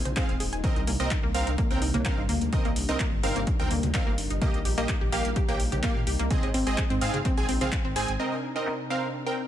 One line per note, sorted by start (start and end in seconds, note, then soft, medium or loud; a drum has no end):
0.00 0.62 G#3 medium
0.00 0.62 C4 medium
0.00 4.38 D#4 medium
0.05 0.14 A#1 medium
0.05 0.09 C5 medium
0.05 closed hi-hat soft
0.05 high conga medium
0.16 0.33 C4 medium
0.16 0.33 G#4 medium
0.16 0.27 C5 medium
0.16 0.33 F5 medium
0.16 kick loud
0.16 clap loud
0.16 closed hi-hat medium
0.29 0.37 D#1 medium
0.29 0.38 C4 medium
0.29 closed hi-hat soft
0.40 0.49 D#1 loud
0.40 0.44 G#4 medium
0.40 open hi-hat loud
0.53 0.61 D#1 loud
0.53 0.59 G#5 medium
0.53 closed hi-hat soft
0.64 4.38 C3 medium
0.64 6.27 G3 medium
0.64 6.27 A#3 medium
0.64 0.80 C4 medium
0.64 4.38 D4 medium
0.64 0.80 A#4 medium
0.64 0.80 D#5 loud
0.64 kick loud
0.64 closed hi-hat medium
0.64 high conga medium
0.76 0.85 C2 medium
0.76 0.82 D#4 medium
0.76 closed hi-hat soft
0.87 0.97 C2 loud
0.87 0.97 A#3 loud
0.87 open hi-hat loud
1.00 1.08 C2 medium
1.00 1.16 C4 medium
1.00 1.16 A#4 medium
1.00 1.16 D#5 medium
1.00 closed hi-hat medium
1.11 1.18 D#4 medium
1.11 kick loud
1.11 clap loud
1.11 closed hi-hat medium
1.23 1.32 C2 medium
1.23 1.32 A#3 loud
1.35 1.44 C2 loud
1.35 1.51 C4 loud
1.35 1.51 A#4 medium
1.35 1.51 F5 loud
1.35 open hi-hat loud
1.47 1.55 C2 medium
1.47 1.53 D#4 medium
1.47 closed hi-hat medium
1.58 1.68 A#3 loud
1.58 kick loud
1.58 closed hi-hat medium
1.71 1.79 C2 medium
1.71 1.80 C4 medium
1.71 1.80 A#4 medium
1.71 1.80 G5 medium
1.71 closed hi-hat soft
1.71 cowbell medium
1.82 1.91 C2 loud
1.82 1.89 D#4 medium
1.82 open hi-hat loud
1.94 2.03 C2 medium
1.94 2.03 A#3 loud
1.94 closed hi-hat soft
1.94 cowbell medium
1.94 high conga medium
2.05 2.22 C4 medium
2.05 2.22 A#4 medium
2.05 2.22 F5 medium
2.05 kick loud
2.05 clap loud
2.05 closed hi-hat medium
2.18 2.26 G1 medium
2.18 2.24 D#4 medium
2.29 2.38 D2 loud
2.29 2.39 A#3 loud
2.29 open hi-hat loud
2.41 2.50 D2 medium
2.41 closed hi-hat medium
2.53 2.69 C4 medium
2.53 2.59 D#4 medium
2.53 2.69 A#4 medium
2.53 2.69 D#5 loud
2.53 kick loud
2.53 closed hi-hat medium
2.53 high conga medium
2.65 2.73 C2 medium
2.65 2.74 A#3 loud
2.65 closed hi-hat soft
2.76 2.86 C2 loud
2.76 open hi-hat loud
2.89 2.97 C2 medium
2.89 3.04 C4 medium
2.89 2.95 D#4 medium
2.89 3.04 A#4 medium
2.89 3.04 D#5 medium
2.89 closed hi-hat medium
3.00 3.10 A#3 loud
3.00 kick loud
3.00 clap loud
3.00 closed hi-hat medium
3.12 3.21 G1 medium
3.23 3.33 G1 loud
3.23 3.40 C4 loud
3.23 3.30 D#4 medium
3.23 3.40 A#4 medium
3.23 3.40 F5 loud
3.23 open hi-hat loud
3.36 3.44 G1 medium
3.36 3.45 A#3 loud
3.36 closed hi-hat medium
3.47 kick loud
3.47 closed hi-hat medium
3.59 3.68 D2 medium
3.59 3.69 C4 medium
3.59 3.66 D#4 medium
3.59 3.69 A#4 medium
3.59 3.69 G5 medium
3.59 closed hi-hat soft
3.71 3.80 D2 loud
3.71 3.81 A#3 loud
3.71 open hi-hat loud
3.83 3.92 D2 medium
3.83 closed hi-hat medium
3.83 high conga medium
3.94 4.11 C4 medium
3.94 4.01 D#4 medium
3.94 4.11 A#4 medium
3.94 4.11 F5 medium
3.94 kick loud
3.94 clap loud
3.94 closed hi-hat medium
4.07 4.15 G1 medium
4.07 4.16 A#3 loud
4.18 4.27 G1 loud
4.18 open hi-hat loud
4.30 4.39 G1 medium
4.30 4.37 D#4 medium
4.30 closed hi-hat medium
4.42 4.52 A#3 loud
4.42 4.58 A#3 medium
4.42 8.16 D#4 medium
4.42 4.58 G4 medium
4.42 4.58 D#5 loud
4.42 kick loud
4.42 closed hi-hat medium
4.42 high conga medium
4.54 4.62 A#1 medium
4.54 closed hi-hat soft
4.65 4.75 A#1 loud
4.65 4.72 G4 medium
4.65 open hi-hat loud
4.78 4.86 A#1 medium
4.78 4.87 A#3 loud
4.78 4.93 A#3 medium
4.78 4.93 G4 medium
4.78 4.93 D#5 medium
4.78 closed hi-hat medium
4.89 kick loud
4.89 clap loud
4.89 closed hi-hat medium
5.01 5.10 A#1 medium
5.01 5.07 G4 medium
5.12 5.22 A#1 loud
5.12 5.23 A#3 loud
5.12 5.29 A#3 loud
5.12 5.29 G4 medium
5.12 5.29 F5 loud
5.12 open hi-hat loud
5.25 5.33 A#1 medium
5.25 closed hi-hat medium
5.36 5.43 G4 medium
5.36 kick loud
5.36 closed hi-hat medium
5.49 5.57 A#1 medium
5.49 5.58 A#3 loud
5.49 5.58 A#3 medium
5.49 5.58 G4 medium
5.49 5.58 G5 medium
5.49 closed hi-hat soft
5.49 cowbell medium
5.60 5.69 A#1 loud
5.60 open hi-hat loud
5.72 5.81 A#1 medium
5.72 5.78 G4 medium
5.72 closed hi-hat medium
5.72 cowbell medium
5.72 high conga medium
5.83 5.93 A#3 loud
5.83 6.00 A#3 medium
5.83 6.00 G4 medium
5.83 6.00 F5 medium
5.83 kick loud
5.83 clap loud
5.83 closed hi-hat medium
5.96 6.04 A#2 medium
6.07 6.16 C2 loud
6.07 6.14 G4 medium
6.07 open hi-hat loud
6.19 6.28 C2 medium
6.19 6.29 A#3 loud
6.19 closed hi-hat medium
6.31 8.18 G#3 medium
6.31 6.47 C4 medium
6.31 8.18 C4 medium
6.31 6.47 G#4 medium
6.31 6.47 D#5 loud
6.31 kick loud
6.31 closed hi-hat medium
6.31 high conga medium
6.43 6.51 G#1 medium
6.43 6.49 G#4 medium
6.43 closed hi-hat soft
6.43 cowbell medium
6.54 6.64 G#1 loud
6.54 6.64 C4 loud
6.54 open hi-hat loud
6.67 6.75 G#1 medium
6.67 6.82 C4 medium
6.67 6.82 G#4 medium
6.67 6.82 D#5 medium
6.67 closed hi-hat medium
6.78 6.85 G#4 medium
6.78 kick loud
6.78 clap loud
6.78 closed hi-hat medium
6.90 6.99 G#2 medium
6.90 6.99 C4 loud
6.90 closed hi-hat soft
7.01 7.11 G#2 loud
7.01 7.18 C4 loud
7.01 7.18 G#4 medium
7.01 7.18 F5 loud
7.01 open hi-hat loud
7.14 7.22 G#2 medium
7.14 7.20 G#4 medium
7.14 closed hi-hat medium
7.14 high conga medium
7.25 7.35 C4 loud
7.25 kick loud
7.25 closed hi-hat medium
7.37 7.46 A#1 medium
7.37 7.47 C4 medium
7.37 7.47 G#4 medium
7.37 7.47 G#5 medium
7.37 closed hi-hat soft
7.49 7.58 A#1 loud
7.49 7.53 C4 loud
7.49 open hi-hat loud
7.61 7.70 A#1 medium
7.61 7.71 C4 medium
7.61 7.67 C4 medium
7.61 7.71 G#4 medium
7.61 7.71 F5 loud
7.61 closed hi-hat medium
7.61 high conga medium
7.72 kick loud
7.72 clap loud
7.72 closed hi-hat medium
7.85 7.93 G#1 medium
7.85 7.94 C4 medium
7.96 8.05 G#1 loud
7.96 8.12 C4 loud
7.96 8.12 G#4 medium
7.96 8.06 C5 medium
7.96 8.12 G#5 loud
7.96 open hi-hat loud
8.08 8.17 G#1 medium
8.08 closed hi-hat medium
8.20 9.48 C3 medium
8.20 8.36 C4 medium
8.20 9.48 C4 medium
8.20 9.48 D4 medium
8.20 9.48 D#4 medium
8.20 8.36 A#4 medium
8.20 9.48 A#4 medium
8.20 8.36 D#5 medium
8.20 closed hi-hat medium
8.20 crash medium
8.43 closed hi-hat medium
8.56 8.71 C4 medium
8.56 8.71 A#4 medium
8.56 8.71 D#5 medium
8.56 closed hi-hat medium
8.67 clap loud
8.67 closed hi-hat medium
8.90 9.07 C4 medium
8.90 9.07 A#4 medium
8.90 9.07 F5 loud
8.90 closed hi-hat medium
9.14 closed hi-hat medium
9.26 9.36 C4 medium
9.26 9.36 A#4 medium
9.26 9.36 G5 medium
9.26 closed hi-hat soft
9.38 closed hi-hat medium